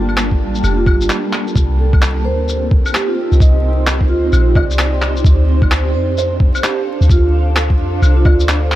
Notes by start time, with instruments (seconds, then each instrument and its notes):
Already playing: 808-style bass G1, ambient pad G3 A#3 D4 A5, felt piano F4 A4 A#4
0.09 claves
0.17 clap, shaker
0.31 kick
0.40 808-style bass A1
0.55 shaker
0.63 808-style bass F1, felt piano G4, claves, shaker
0.77 vibraphone F4
0.86 808-style bass G1, vibraphone F4, kick, claves
1.01 shaker
1.10 clap, shaker
1.33 clap, claves
1.47 shaker
1.56 808-style bass C2, ambient pad C4, kick, shaker
1.66 ambient pad G4 C5
1.79 felt piano A4
1.93 kick, claves
1.99 ambient pad D#4, clap, shaker
2.24 808-style bass D2, felt piano A#4, vibraphone C5
2.49 shaker
2.71 kick
2.86 claves, shaker
2.94 vibraphone G4, clap, shaker
3.08 vibraphone F4
3.32 808-style bass C2, shaker
3.40 felt piano D#5, kick, shaker
3.87 clap, shaker
4.01 kick
4.09 808-style bass D2, vibraphone F4
4.33 808-style bass A#1, claves, shaker
4.55 808-style bass C2, felt piano D5, kick, claves
4.71 shaker
4.79 clap, shaker
5.02 clap, claves
5.16 shaker
5.24 808-style bass D2, ambient pad D4, kick, shaker
5.42 ambient pad A4
5.62 kick, claves
5.71 clap, shaker
5.78 ambient pad F5
5.94 808-style bass F2, vibraphone C5
6.18 felt piano C5, shaker
6.40 kick
6.55 claves, shaker
6.64 vibraphone G4, clap, shaker
7.01 808-style bass D2, shaker
7.10 vibraphone F4, kick, shaker
7.56 clap, shaker
7.70 kick
7.80 808-style bass F2
8.02 808-style bass C2, claves, shaker
8.17 vibraphone F4
8.25 808-style bass D2, vibraphone F4, felt piano D5, kick, claves
8.40 shaker
8.49 clap, shaker
8.72 clap, claves